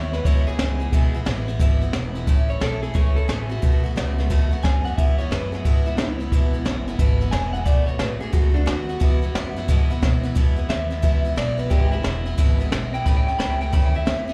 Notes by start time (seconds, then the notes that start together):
Already playing: D#2 E3 G#3 B3 E4 C#5
0.13 E3 G#3 B3 E4 B4, snare, ride
0.25 E2 B2 E3 G#3 B3 E4 C#5, kick, ride
0.47 E3 G#3 B3 E4 G#4, muted upright bass stroke, ride
0.59 C#2 E3 G#3 B3 E4, snare, ride
0.80 E3 G#3 B3 E4, ride
0.92 B1 E2 B2 E3 G#3 B3 E4, kick, ride
1.14 E3 G#3 B3 E4, ride
1.25 A1 E3 G#3 B3 E4, snare, ride
1.48 E3 G#3 B3 E4, ride
1.59 G#1 E2 B2 E3 G#3 B3 E4, kick, ride
1.81 E3 G#3 B3 E4, ride
1.93 E1 E3 G#3 B3 E4, snare, ride
2.15 E3 G#3 B3 E4, ride
2.27 A1 A2 E3 A3 C#4 E4, kick, ride
2.49 A3 C#4 E4 C#5, ride
2.60 B1 E3 A3 C#4 E4 A4, snare, ride
2.83 A3 C#4 E4 G#4, ride
2.94 C#2 A2 E3 A3 C#4 E4 C#5, kick, ride
3.16 A3 C#4 E4 A4, ride
3.28 A1 E3 A3 C#4 E4 G#4, snare, ride
3.49 A3 C#4 E4 F#4, ride
3.62 B1 B2 D#3 A3 B3 F#4, kick, ride
3.83 A3 B3 F#4, ride
3.96 C#2 D#3 A3 B3 F#4, snare, ride
4.18 A3 B3 F#4, snare, ride
4.30 D#2 B2 D#3 A3 B3 F#4, kick, ride
4.51 A3 B3 F#4, ride
4.63 F#2 D#3 A3 B3 F#4 G#5, kick, snare, ride
4.85 A3 B3 F#4 F#5, ride
4.97 E2 B2 E3 G#3 B3 E4 E5, kick, ride
5.18 E3 G#3 B3 E4 C#5, ride
5.31 F#2 E3 G#3 B3 E4 B4, snare, ride
5.52 E3 G#3 B3 E4 G#4, snare, ride
5.64 E2 G#2 B2 E3 G#3 B3 E4 F#4, kick, ride
5.86 E3 G#3 B3 E4, ride
5.97 C#2 E3 G#3 B3 E4, snare, ride
6.20 E3 G#3 B3 E4, ride
6.32 B1 E2 B2 E3 G#3 B3 E4, kick, ride
6.53 E3 G#3 B3 E4, ride
6.65 F#1 E3 G#3 B3 E4, snare, ride
6.88 E3 G#3 B3 E4, ride
6.99 G#1 E2 B2 E3 G#3 B3 E4, kick, ride
7.21 E3 G#3 B3 E4, ride
7.31 E1 E3 G#3 B3 E4 G#5, snare, ride
7.53 G#3 B3 E4 F#5, ride
7.57 E3
7.65 B1 B2 D#3 A3 B3 F#4 D5, kick, ride
7.87 A3 B3 F#4 C#5, ride
7.99 A1 D#3 A3 B3 F#4 B4, snare, ride
8.20 A3 B3 F#4 G#4, muted upright bass stroke, ride
8.33 C#2 B2 D#3 A3 B3 F#4, kick, ride
8.54 A3 B3 D4 F#4, ride
8.66 D#2 D#3 A3 B3 F#4, snare, ride
8.89 A3 B3 F#4, ride
9.00 E2 B2 E3 G#3 B3 E4, kick, ride
9.22 E3 G#3 B3 E4, ride
9.35 F#2 E3 G#3 B3 E4, snare, ride
9.56 E3 G#3 B3 E4, snare, ride
9.68 E2 G#2 B2 E3 G#3 B3 E4, kick, ride
9.90 E3 G#3 B3 E4, ride
10.02 B2 E3 G#3 B3 E4, kick, snare, ride
10.23 E3 G#3 B3 E4, ride
10.35 E2 B2 E3 G#3 B3 E4, kick, ride
10.56 E3 G#3 B3 E4, ride
10.69 D#2 E3 G#3 B3 E4 E5, snare, ride
10.90 E3 G#3 B3 E4, snare, ride
11.02 C#2 E2 B2 E3 G#3 B3 E4, kick, ride
11.25 E3 G#3 B3 E4, ride
11.36 B1 E3 G#3 B3 E4 D5, snare, ride
11.58 E3 G#3 B3 E4 B4, ride
11.70 G#1 E2 B2 E3 G#3 B3 E4 G4, kick, ride
11.92 E3 G#3 B3 E4, ride
12.03 E1 E3 G#3 B3 E4, snare, ride
12.26 E3 G#3 B3 E4, ride
12.38 G#1 E2 B2 E3 G#3 B3 E4, kick, ride
12.59 E3 G#3 B3 E4, ride
12.72 B1 E3 G#3 B3 E4, snare, ride
12.94 E3 G#3 B3 E4 G5, ride
13.05 A1 A2 E3 A3 C#4 E4 B5, kick, ride
13.17 G5
13.27 A3 C#4 E4 G5, muted upright bass stroke, ride
13.39 C#2 E3 A3 C#4 E4 B5, snare, ride
13.50 G5
13.61 A3 C#4 E4 G5, ride
13.72 D#2 A2 E3 A3 C#4 E4 B5, kick, ride
13.86 G5
13.94 A3 C#4 E4 E5, ride
14.06 E2 E3 A3 C#4 E4, snare, ride
14.28 A3 C#4 E4, muted upright bass stroke, ride